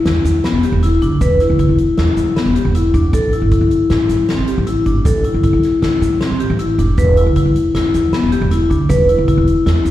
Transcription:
0.05 E2 E4, snare, closed hi-hat
0.24 E2, closed hi-hat, shaker
0.44 B3, snare, closed hi-hat
0.53 E1
0.63 G4, closed hi-hat
0.72 E1
0.83 E4, snare, closed hi-hat, shaker
1.02 D2 D4, kick, closed hi-hat, shaker
1.21 E1 B4, kick, closed hi-hat, shaker
1.40 E4, snare, closed hi-hat
1.50 D2
1.59 E4, kick, closed hi-hat
1.69 E1
1.78 closed hi-hat
1.98 E2 E4, snare, closed hi-hat
2.17 E2, closed hi-hat, shaker
2.36 B3, snare, closed hi-hat
2.46 E1
2.55 G4, closed hi-hat
2.65 E1
2.75 E4, closed hi-hat, shaker
2.94 E2 D4, kick, closed hi-hat, shaker
3.13 A1 A4, kick, closed hi-hat, shaker
3.33 E4, closed hi-hat
3.42 G1
3.52 E4, kick, closed hi-hat
3.61 A1
3.71 closed hi-hat
3.90 A2 E4, snare, closed hi-hat
4.09 A2, snare, closed hi-hat, shaker
4.29 C4, snare, closed hi-hat
4.38 A1
4.47 G4, closed hi-hat
4.58 A1
4.67 E4, closed hi-hat, shaker
4.86 G1 D4, kick, closed hi-hat
5.05 A1 A4, kick, closed hi-hat, shaker
5.24 E4, closed hi-hat
5.34 G1
5.43 E4, kick, closed hi-hat
5.53 A1
5.63 snare, closed hi-hat
5.82 A2 E4, snare, closed hi-hat
6.01 A2, closed hi-hat, shaker
6.21 C4, snare, closed hi-hat
6.31 A1
6.40 G4, closed hi-hat
6.50 A1
6.59 E4, closed hi-hat
6.78 F1 D4, snare, closed hi-hat
6.98 E1 B4, kick, closed hi-hat, shaker
7.17 E4, closed hi-hat
7.26 D2
7.36 E4, kick, closed hi-hat
7.45 E1
7.56 closed hi-hat
7.75 E2 E4, snare, closed hi-hat
7.94 E2, snare, closed hi-hat, shaker
8.13 B3, snare, closed hi-hat
8.23 E1
8.32 G4, closed hi-hat
8.41 E1
8.51 E4, snare, closed hi-hat, shaker
8.70 D2 D4, kick, closed hi-hat, shaker
8.89 E1 B4, kick, closed hi-hat, shaker
9.09 E4, closed hi-hat
9.18 D2
9.28 E4, kick, closed hi-hat
9.37 E1
9.47 closed hi-hat
9.66 E2 E4, snare, closed hi-hat
9.85 E2, closed hi-hat, shaker

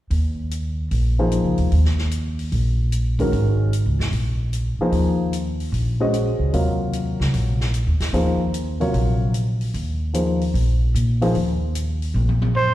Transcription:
0.10 D#2, open hi-hat
0.51 closed hi-hat
0.91 A#1, open hi-hat
1.19 F3 A#3 D#4 G#4 C5
1.31 closed hi-hat
1.44 C#2
1.58 D2, open hi-hat
1.72 D#2, open hi-hat
1.85 snare
1.98 snare
2.11 closed hi-hat
2.39 open hi-hat
2.52 A#1, open hi-hat
2.92 closed hi-hat
3.19 D#3 G#3 C#4 F#4 A#4, kick, open hi-hat
3.32 G#1, open hi-hat
3.73 closed hi-hat
3.86 C#2
3.99 E2, snare
4.12 A#1, open hi-hat
4.53 closed hi-hat
4.79 F3 A#3 D#4 G#4 C5, muted upright bass stroke
4.92 D#2, open hi-hat
5.33 closed hi-hat
5.60 open hi-hat
5.72 A#1, open hi-hat
6.00 G#3 C#4 F#4 C5 D#5
6.13 closed hi-hat
6.39 C#2
6.53 D#2 C3 F#3 F4 A#4 C#5, open hi-hat
6.93 closed hi-hat
7.20 C#2, snare
7.34 A#1, open hi-hat
7.61 snare
7.74 closed hi-hat
7.87 D#2
8.00 E2, snare, open hi-hat
8.13 D#2 F3 A#3 D#4 G#4 C5, open hi-hat
8.54 closed hi-hat
8.80 C3 F#3 F4 A#4 C#5, open hi-hat
8.94 A#1, open hi-hat
9.34 closed hi-hat
9.61 open hi-hat
9.74 D#2, open hi-hat
10.14 F3 A#3 D#4 G#4 C5, closed hi-hat
10.41 open hi-hat
10.54 A#1, open hi-hat
10.94 A#2, closed hi-hat
11.21 F3 A#3 D#4 G#4 C5, open hi-hat
11.35 D#2, open hi-hat
11.75 closed hi-hat
12.02 open hi-hat
12.14 A#1, high tom
12.29 high tom
12.42 high tom
12.55 C5, floor tom
12.68 floor tom

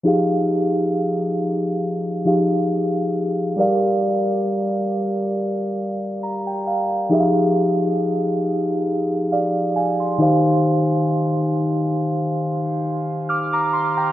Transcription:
0.03 F3 D#4 G4 G#4
0.07 F5
2.25 F3 D#4 G4 G#4 F5
3.56 G3 G4 A#4 D5
3.60 F5
6.23 A#5
6.47 G5
6.67 F5
7.09 F3 D#4 G4 G#4
7.13 E5
7.20 F5
9.32 D5 F5
9.76 F5 G#5
10.00 G#5 C6
10.18 D#3 D#4 G4 C5
10.22 F5
13.29 D6 F6
13.53 A#5 D6
13.73 C6
13.97 G5 A#5

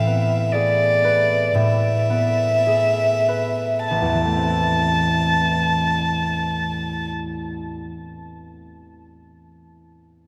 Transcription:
Already playing: A2 E5
0.07 B3
0.52 G#4 D5
1.04 B4
1.55 A2 E5
2.10 B3
2.67 G#4
3.28 B4
3.88 A1 A5
4.02 E2
4.14 E3
4.25 A3
4.36 C4
4.48 E4

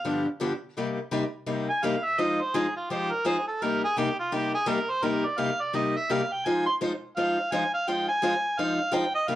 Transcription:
Already playing: F5
0.05 G2 D3 F3 B3 D4 G4
0.40 G2 D3 F3 B3 D4 G4
0.77 C3 G3 A#3 D#4 G4
1.11 C3 G3 A#3 D#4 G4
1.46 C3 G3 A#3 D#4 G4
1.70 G#5
1.83 C3 G3 A#3 D#4 G4 F5
2.05 E5
2.18 F3 G#3 D#4 F4 C5 D#5
2.41 C5
2.54 F3 G#3 D#4 F4 G#4 C5
2.76 F4
2.90 F3 G#3 D#4 F4 G4 C5
3.11 A#4
3.25 F3 G#3 D#4 F4 G#4 C5
3.48 A4
3.62 C3 G3 A#3 D#4 G4 A#4
3.84 G#4
3.96 C3 G3 A#3 D#4 G4
4.19 F4
4.32 C3 G3 A#3 D#4 G4
4.54 G#4
4.66 C3 G3 A#3 D#4 G4 A#4
4.90 C5
5.02 C3 G3 A#3 D#4 G4 A#4
5.26 D5
5.38 C3 G3 A#3 D#4 G4 F5
5.61 D5
5.73 C3 G3 A#3 D#4 G4 D#5
5.96 E5
6.10 C3 G3 A#3 D#4 G4 F5
6.32 G5
6.46 F3 G#3 D#4 F4 C5 G#5
6.66 C6
6.81 F3 G#3 D#4 F4 C5
7.16 F3 G#3 D#4 F4 C5 F5
7.52 F3 G#3 D#4 F4 C5 G#5
7.74 F5
7.88 F3 G#3 D#4 F4 C5 G5
8.09 G#5
8.22 F3 G#3 D#4 F4 C5
8.59 F3 G#3 D#4 F4 C5 F5
8.92 F3 G#3 D#4 F4 C5 G5
9.15 D#5
9.28 C3 G3 A#3 D#4 G4 F5

